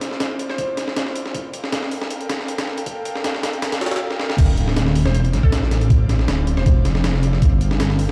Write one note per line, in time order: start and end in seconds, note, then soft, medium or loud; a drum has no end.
0.01 snare soft
0.01 closed hi-hat medium
0.11 snare soft
0.20 snare loud
0.20 closed hi-hat medium
0.39 closed hi-hat medium
0.49 0.78 C5 medium
0.49 snare soft
0.58 kick loud
0.58 closed hi-hat medium
0.77 snare soft
0.77 closed hi-hat medium
0.88 snare medium
0.97 snare loud
0.97 closed hi-hat medium
1.07 snare soft
1.16 closed hi-hat medium
1.26 snare soft
1.34 kick loud
1.34 closed hi-hat medium
1.53 closed hi-hat medium
1.64 snare medium
1.72 snare loud
1.72 closed hi-hat medium
1.82 snare medium
1.91 open hi-hat medium
2.01 snare medium
2.10 closed hi-hat medium
2.21 closed hi-hat soft
2.29 snare loud
2.29 closed hi-hat medium
2.40 snare soft
2.48 closed hi-hat medium
2.58 snare loud
2.58 closed hi-hat medium
2.67 snare soft
2.78 closed hi-hat medium
2.86 kick loud
2.86 closed hi-hat medium
3.05 closed hi-hat medium
3.15 snare medium
3.24 snare loud
3.24 closed hi-hat medium
3.34 snare medium
3.43 snare loud
3.43 closed hi-hat medium
3.53 closed hi-hat soft
3.62 snare loud
3.62 closed hi-hat medium
3.72 snare loud
3.72 closed hi-hat medium
3.81 snare medium
3.81 closed hi-hat medium
3.86 snare medium
3.86 closed hi-hat medium
3.91 snare medium
3.91 closed hi-hat medium
3.96 snare medium
3.96 closed hi-hat medium
4.10 snare soft
4.19 snare medium
4.30 snare medium
4.38 5.04 D1 medium
4.38 kick loud
4.38 closed hi-hat medium
4.38 crash medium
4.58 closed hi-hat medium
4.68 snare medium
4.76 snare loud
4.76 closed hi-hat medium
4.86 snare medium
4.95 open hi-hat medium
5.05 5.35 E1 loud
5.05 5.11 C5 medium
5.05 snare medium
5.14 5.21 C5 medium
5.14 closed hi-hat medium
5.25 closed hi-hat soft
5.33 6.27 A1 medium
5.33 snare soft
5.33 closed hi-hat medium
5.43 5.66 A4 medium
5.43 kick medium
5.52 snare loud
5.52 closed hi-hat medium
5.62 snare soft
5.71 snare medium
5.71 closed hi-hat medium
5.81 closed hi-hat soft
5.90 kick loud
5.90 closed hi-hat medium
6.09 snare medium
6.09 closed hi-hat medium
6.19 snare soft
6.28 6.56 D1 medium
6.28 snare loud
6.28 closed hi-hat medium
6.47 closed hi-hat medium
6.57 6.84 E1 loud
6.57 6.85 C5 medium
6.57 snare soft
6.66 kick loud
6.66 closed hi-hat medium
6.85 7.41 F1 medium
6.85 snare medium
6.85 closed hi-hat medium
6.95 snare medium
7.04 snare loud
7.04 closed hi-hat medium
7.14 snare soft
7.23 closed hi-hat medium
7.33 snare soft
7.42 8.07 G1 loud
7.42 kick loud
7.42 closed hi-hat medium
7.61 closed hi-hat medium
7.71 snare medium
7.80 snare loud
7.80 closed hi-hat medium
7.90 snare medium
7.99 open hi-hat medium